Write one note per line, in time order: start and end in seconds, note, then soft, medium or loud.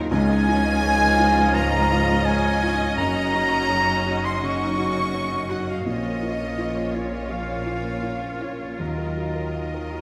0.00 0.12 D#2 loud
0.00 0.12 D#2 medium
0.00 0.13 A#2 medium
0.00 0.12 F#3 medium
0.00 0.11 D#4 medium
0.00 2.94 D#4 medium
0.00 0.14 F4 medium
0.00 0.13 A#4 medium
0.00 0.14 D#5 medium
0.11 1.51 C#2 medium
0.11 2.94 C#2 loud
0.11 2.95 C#2 medium
0.11 2.94 F3 medium
0.11 5.83 C#4 medium
0.11 2.94 F4 medium
0.11 5.83 D#5 medium
0.11 1.51 G#5 loud
0.11 1.57 G#5 loud
0.29 0.58 D#5 medium
0.48 0.76 F4 medium
0.66 0.94 D#5 medium
0.83 1.12 C#5 medium
1.01 1.30 D#5 medium
1.19 1.48 F4 medium
1.39 1.67 D#5 medium
1.55 1.84 G#2 medium
1.55 2.27 A#5 loud
1.55 2.26 A#5 medium
1.55 2.27 A#5 medium
1.74 2.02 D#5 medium
1.92 2.20 F4 medium
2.11 2.38 D#5 medium
2.25 2.56 C#5 medium
2.25 2.97 G#5 loud
2.25 2.98 G#5 medium
2.25 2.98 G#5 loud
2.46 2.74 D#5 medium
2.63 2.91 F4 medium
2.81 2.98 D#5 medium
2.97 5.83 F#1 medium
2.97 4.38 F#2 medium
2.97 5.82 F#2 medium
2.97 5.70 F#3 medium
2.97 5.70 D#4 medium
2.97 5.87 F#4 medium
2.97 3.93 A#5 medium
2.97 4.26 A#5 loud
2.97 4.21 A#5 loud
3.16 3.45 D#5 medium
3.34 3.63 F#4 soft
3.51 3.80 D#5 soft
3.69 3.98 C#5 medium
3.88 4.17 D#5 medium
4.06 4.35 F#4 soft
4.24 4.53 D#5 soft
4.24 4.42 C6 medium
4.24 4.43 C6 medium
4.41 4.71 C#3 medium
4.41 5.50 C#6 medium
4.41 5.51 C#6 medium
4.60 4.89 D#5 soft
4.78 5.07 F#4 soft
4.96 5.25 D#5 soft
5.14 5.43 C#5 soft
5.32 5.61 D#5 soft
5.50 5.79 F#4 medium
5.50 5.71 F#5 medium
5.50 5.68 F#5 medium
5.50 5.69 F#5 medium
5.67 5.86 D#5 soft
5.67 5.86 F5 medium
5.67 5.87 F5 medium
5.67 5.86 F5 medium
5.86 8.80 A#1 medium
5.86 7.27 A#2 medium
5.86 8.80 A#2 medium
5.86 7.27 F3 medium
5.86 8.76 A#3 medium
5.86 7.27 C#4 medium
5.86 10.01 F4 medium
5.86 8.76 C#5 medium
5.86 6.96 D#5 medium
5.86 6.93 D#5 medium
6.04 6.33 C#5 soft
6.22 6.51 F4 soft
6.40 6.69 C#5 soft
6.58 6.87 F4 soft
6.76 7.05 C#5 soft
6.95 7.24 F4 soft
6.95 7.13 C#5 medium
6.95 7.16 C#5 medium
6.95 7.13 C#5 medium
7.11 7.41 C#5 soft
7.11 7.31 D#5 soft
7.11 7.33 D#5 medium
7.11 7.32 D#5 soft
7.29 7.59 F3 soft
7.29 8.77 F3 soft
7.29 8.77 C#4 soft
7.29 8.42 F5 medium
7.29 8.44 F5 medium
7.29 8.42 F5 soft
7.48 7.78 C#5 soft
7.66 7.96 F4 soft
7.84 8.15 C#5 soft
8.03 8.34 F4 soft
8.22 8.53 C#5 soft
8.41 8.72 F4 soft
8.41 8.80 C#5 soft
8.41 8.80 C#5 medium
8.41 8.80 C#5 soft
8.59 8.79 C#5 soft
8.79 10.01 D#2 soft
8.79 10.01 D#3 soft
8.79 10.01 F#3 soft
8.79 10.01 F4 soft
8.79 10.01 A#4 soft
8.79 10.01 D#5 soft
8.79 10.01 D#5 medium
8.79 10.01 D#5 soft
8.98 9.29 A#4 soft
9.17 9.48 F#4 soft
9.35 9.67 A#4 soft
9.55 9.86 F5 soft
9.74 10.01 A#4 soft
9.93 10.01 F#4 soft